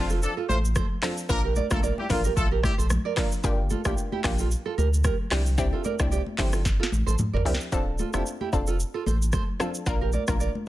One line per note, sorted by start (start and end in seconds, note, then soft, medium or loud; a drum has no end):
0.00 0.26 F1 medium
0.00 0.20 C4 medium
0.00 0.20 D4 medium
0.00 0.20 F4 medium
0.00 0.20 A4 medium
0.10 0.18 F4 medium
0.10 0.18 A4 medium
0.10 shaker medium
0.22 0.34 F3 medium
0.22 0.34 D4 medium
0.22 0.34 A4 medium
0.22 shaker medium
0.37 0.45 F4 medium
0.37 0.45 A4 medium
0.49 0.80 A1 medium
0.49 0.58 A3 medium
0.49 0.58 F4 medium
0.49 0.59 A4 medium
0.49 0.58 C5 medium
0.49 high conga medium
0.49 shaker medium
0.65 shaker medium
0.75 0.86 A4 medium
0.75 0.85 C5 loud
0.75 kick medium
0.75 cross-stick loud
0.75 high conga medium
0.75 low conga medium
0.75 shaker medium
1.02 1.27 C4 medium
1.02 1.27 D4 medium
1.02 1.28 F4 medium
1.02 1.12 F4 medium
1.02 1.12 A4 medium
1.02 1.28 A4 medium
1.02 cross-stick medium
1.02 clap loud
1.02 open hi-hat medium
1.02 low conga medium
1.02 shaker medium
1.18 shaker medium
1.29 1.60 A#1 loud
1.29 1.41 F3 loud
1.29 1.67 A#3 medium
1.29 1.41 D4 loud
1.29 1.67 D4 medium
1.29 1.67 F4 medium
1.29 1.41 A#4 loud
1.29 1.68 A#4 loud
1.29 kick loud
1.29 shaker medium
1.44 1.52 G4 medium
1.44 1.52 A#4 medium
1.56 1.66 A#4 medium
1.56 1.65 D5 medium
1.56 high conga medium
1.56 shaker medium
1.71 1.91 A#1 loud
1.71 1.81 A3 medium
1.71 2.07 A#3 medium
1.71 2.07 D4 medium
1.71 2.07 F4 medium
1.71 1.81 F4 medium
1.71 1.81 A4 medium
1.71 2.07 A#4 medium
1.71 kick loud
1.71 cross-stick loud
1.71 high conga medium
1.71 shaker medium
1.83 1.93 A#4 medium
1.83 1.92 D5 medium
1.83 shaker medium
1.98 2.08 G3 medium
1.98 2.08 E4 medium
1.98 2.08 G4 medium
1.98 high conga medium
2.10 2.30 A1 medium
2.10 2.22 D3 medium
2.10 2.35 A#3 medium
2.10 2.22 A#3 medium
2.10 2.35 D4 medium
2.10 2.22 F4 medium
2.10 2.35 F4 medium
2.10 2.20 A4 medium
2.10 2.35 A#4 medium
2.10 2.19 C5 medium
2.10 kick medium
2.10 open hi-hat medium
2.10 low conga medium
2.10 shaker soft
2.24 2.33 G4 medium
2.24 2.32 A#4 medium
2.24 shaker medium
2.37 2.68 A#1 medium
2.37 2.48 A3 medium
2.37 2.48 F4 medium
2.37 2.48 A4 loud
2.37 kick loud
2.37 shaker medium
2.51 2.59 G4 medium
2.51 2.59 A#4 medium
2.63 2.72 G3 medium
2.63 2.72 E4 medium
2.63 2.72 G4 medium
2.63 kick loud
2.63 cross-stick loud
2.63 high conga medium
2.63 shaker medium
2.78 2.98 A#1 medium
2.78 2.86 A4 medium
2.78 2.86 C5 medium
2.78 shaker medium
2.90 cross-stick loud
2.90 high conga medium
2.90 low conga medium
2.90 shaker medium
3.05 3.13 A#4 medium
3.05 3.13 D5 medium
3.17 3.33 A#3 medium
3.17 3.33 D4 medium
3.17 3.33 F4 medium
3.17 3.33 A#4 medium
3.17 3.27 A#4 medium
3.17 3.26 D5 medium
3.17 kick loud
3.17 cross-stick loud
3.17 clap loud
3.17 open hi-hat medium
3.17 low conga medium
3.17 shaker medium
3.32 shaker medium
3.44 3.75 G1 loud
3.44 3.60 A#3 loud
3.44 3.60 D4 medium
3.44 3.60 F4 medium
3.44 3.60 G4 loud
3.44 kick loud
3.44 shaker medium
3.70 3.80 F4 medium
3.70 3.80 A4 medium
3.70 high conga medium
3.70 shaker medium
3.85 3.94 A#1 medium
3.85 4.21 A#3 medium
3.85 4.21 D4 medium
3.85 3.93 E4 medium
3.85 4.21 F4 medium
3.85 3.93 G4 medium
3.85 4.22 G4 medium
3.85 kick loud
3.85 cross-stick loud
3.85 high conga medium
3.85 shaker medium
3.98 shaker medium
4.12 4.20 E4 medium
4.12 4.20 G4 medium
4.12 high conga medium
4.24 4.55 A#1 loud
4.24 4.49 A#3 medium
4.24 4.49 D4 medium
4.24 4.49 F4 medium
4.24 4.49 G4 medium
4.24 kick medium
4.24 cross-stick loud
4.24 clap medium
4.24 open hi-hat medium
4.24 low conga medium
4.24 shaker soft
4.38 4.47 F4 medium
4.38 4.46 A4 medium
4.38 shaker medium
4.51 shaker medium
4.66 4.74 F4 medium
4.66 4.73 A4 medium
4.78 5.09 D2 medium
4.78 4.87 G4 medium
4.78 4.87 A#4 medium
4.78 high conga medium
4.78 shaker medium
4.94 shaker medium
5.04 5.14 G4 medium
5.04 5.14 A#4 medium
5.04 kick medium
5.04 cross-stick medium
5.04 high conga medium
5.04 low conga medium
5.04 shaker medium
5.31 5.71 C2 loud
5.31 5.56 C4 medium
5.31 5.56 D4 medium
5.31 5.56 E4 medium
5.31 5.41 E4 medium
5.31 5.41 G4 medium
5.31 5.56 G4 medium
5.31 cross-stick medium
5.31 clap medium
5.31 open hi-hat medium
5.31 low conga medium
5.31 shaker medium
5.46 shaker medium
5.58 5.96 C4 loud
5.58 5.96 D4 medium
5.58 5.96 E4 medium
5.58 5.96 G4 loud
5.58 kick loud
5.58 shaker medium
5.73 5.81 F4 medium
5.73 5.80 A4 medium
5.84 5.94 A#4 medium
5.84 5.94 D5 medium
5.84 high conga medium
5.84 shaker soft
5.99 6.20 C2 loud
5.99 6.36 C4 medium
5.99 6.36 D4 medium
5.99 6.36 E4 medium
5.99 6.36 G4 medium
5.99 kick medium
5.99 cross-stick loud
5.99 high conga medium
5.99 shaker medium
6.11 6.21 G4 medium
6.11 6.21 D5 medium
6.11 shaker medium
6.26 high conga medium
6.38 6.78 G1 medium
6.38 6.63 C4 medium
6.38 6.63 D4 medium
6.38 6.63 E4 medium
6.38 6.64 G4 medium
6.38 6.48 A4 medium
6.38 6.47 C5 medium
6.38 kick medium
6.38 clap medium
6.38 open hi-hat medium
6.38 low conga medium
6.38 shaker soft
6.53 6.61 F4 medium
6.53 6.60 A4 medium
6.53 cross-stick loud
6.53 shaker medium
6.65 kick loud
6.65 snare medium
6.65 shaker medium
6.80 6.88 F4 medium
6.80 6.87 A4 medium
6.80 snare medium
6.92 7.03 A1 medium
6.92 high conga medium
6.92 shaker medium
7.07 7.16 A1 loud
7.07 7.15 A4 medium
7.07 7.14 C5 medium
7.07 shaker medium
7.18 mid tom medium
7.18 high conga medium
7.18 low conga medium
7.18 shaker medium
7.33 7.42 G1 medium
7.33 7.42 A#4 medium
7.33 7.41 D5 medium
7.33 floor tom loud
7.45 7.57 C2 medium
7.45 7.61 C4 medium
7.45 7.61 D4 medium
7.45 7.62 E4 medium
7.45 7.62 G4 medium
7.45 7.55 A#4 medium
7.45 7.55 D5 medium
7.45 open hi-hat medium
7.45 low conga medium
7.45 shaker medium
7.55 snare medium
7.60 shaker medium
7.72 8.03 D1 loud
7.72 7.88 C4 medium
7.72 7.88 D4 medium
7.72 7.88 F4 medium
7.72 7.88 A4 loud
7.72 kick loud
7.72 shaker medium
7.98 8.09 F4 medium
7.98 8.08 A4 medium
7.98 high conga medium
7.98 shaker medium
8.14 8.23 F1 loud
8.14 8.50 C4 medium
8.14 8.50 D4 medium
8.14 8.22 E4 medium
8.14 8.50 F4 medium
8.14 8.21 G4 medium
8.14 8.50 A4 medium
8.14 cross-stick loud
8.14 high conga medium
8.14 shaker medium
8.26 shaker medium
8.41 8.49 E4 medium
8.41 8.48 G4 medium
8.41 high conga medium
8.53 8.84 F1 medium
8.53 8.78 C4 medium
8.53 8.78 D4 medium
8.53 8.78 F4 medium
8.53 8.78 A4 medium
8.53 kick medium
8.53 shaker soft
8.67 8.76 F4 medium
8.67 8.75 A4 medium
8.67 shaker medium
8.80 shaker medium
8.94 9.02 F4 medium
8.94 9.02 A4 medium
9.06 9.37 A1 medium
9.06 9.16 A4 medium
9.06 9.16 C5 medium
9.06 high conga medium
9.06 shaker soft
9.22 shaker medium
9.33 9.43 A4 medium
9.33 9.42 C5 medium
9.33 kick medium
9.33 cross-stick medium
9.33 high conga medium
9.33 low conga medium
9.33 shaker medium
9.60 9.85 C4 medium
9.60 9.85 D4 medium
9.60 9.85 F4 medium
9.60 9.70 F4 medium
9.60 9.69 A4 medium
9.60 9.85 A4 medium
9.60 cross-stick loud
9.60 low conga medium
9.60 shaker soft
9.74 shaker medium
9.86 10.17 A#1 loud
9.86 10.24 A#3 medium
9.86 10.25 D4 medium
9.86 10.25 F4 medium
9.86 10.25 A#4 loud
9.86 kick loud
9.86 shaker medium
10.01 10.09 G4 medium
10.01 10.09 A#4 medium
10.12 10.23 A#4 medium
10.12 10.23 D5 medium
10.12 high conga medium
10.12 shaker soft
10.28 10.48 A#1 loud
10.28 10.64 A#3 medium
10.28 10.64 D4 medium
10.28 10.64 F4 medium
10.28 10.64 A#4 medium
10.28 kick medium
10.28 cross-stick loud
10.28 high conga medium
10.28 shaker medium
10.40 10.50 A#4 medium
10.40 10.49 D5 medium
10.40 shaker medium
10.55 high conga medium